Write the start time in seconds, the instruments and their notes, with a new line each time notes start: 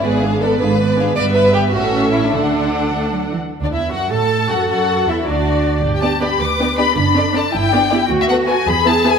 0.01 double bass section G#1, cello section G#2, viola section B3 B4, violin section G#4 D5
0.21 viola section D4 G#4, violin section F5
0.39 viola section B3 B4, violin section A4 D5
0.59 double bass section G#1, cello section G#2, viola section D4 G#4, violin section B4 F5
0.79 viola section B3 B4, violin section D5
0.99 viola section D4 G#4, violin section F5
1.17 double bass section G1, cello section G2, viola section B3 B4, violin section D5 E5
1.35 violin section B4
1.54 violin section G4
1.72 double bass section A1, cello section A2, viola section C#4 A4, violin section F#4 E5
2.11 violin section E4
2.32 double bass section D2, cello section D3, violin section D4 F#5, viola section D4 A4
2.93 cello section A3
3.12 cello section F#3
3.32 cello section E3
3.61 double bass section D2, violin section D4 D5, viola section D4
3.71 double bass section E2, violin section E4 E5, viola section E4
3.91 double bass section F#2, violin section F#4 F#5, viola section F#4
4.10 double bass section A2, cello section A4, viola section A4, violin section A4 A5
4.49 double bass section F#2, viola section F#4, violin section F#4 F#5
4.68 double bass section F#2, viola section F#4, violin section F#4 F#5
5.07 double bass section E2, violin section E4 E5, viola section E4
5.26 double bass section D2, viola section D4, violin section D4 D5, cello section F#4
5.83 double bass section G1, cello section G4
5.95 violin section G5
6.01 viola section B3 D4, violin section G4 D5 A5
6.21 viola section B3 D4, violin section G4 D5 B5
6.40 double bass section D2, cello section B4, violin section D6
6.59 viola section B3 D4, violin section G4 D5
6.77 viola section B3 D4, violin section G4 D5 B5
6.96 double bass section F#1, cello section D4, violin section B5
7.15 viola section C4 D4, violin section A4 D5
7.33 viola section C4 D4, violin section A4 D5 A5
7.52 double bass section G1, cello section E4, violin section G5
7.71 viola section B3 D4, cello section D4, violin section G4 D5
7.90 viola section B3 D4, cello section E4, violin section G4 D5
8.09 double bass section D2, cello section F#4
8.21 violin section E5
8.28 viola section B3 F#4, violin section A4 B4 F#5
8.47 viola section B3 F#4, violin section A4 B4 G#5
8.67 double bass section E2, cello section G#4, violin section B5
8.85 viola section B3 E4, violin section G#4 B4 A5
9.04 viola section B3 E4, violin section G#4 B4 G#5